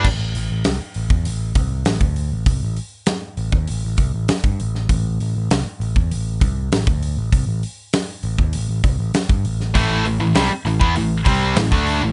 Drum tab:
CC |x---------------|----------------|----------------|----------------|
HH |--o-o-o-o-o-o-o-|o-o-o-o-o-o-o-o-|o-o-o-o-o-o-o-o-|o-o-o-o-o-o-o-o-|
SD |----o-------o---|----o-------o--o|----o-------o---|----o-------o--o|
BD |o------o--o--o--|o------o--o--o--|o------o--o--o--|o------o--o--o--|

CC |----------------|
HH |o-o-o-o-o-o-o-o-|
SD |----o-------o---|
BD |o------o--o--o--|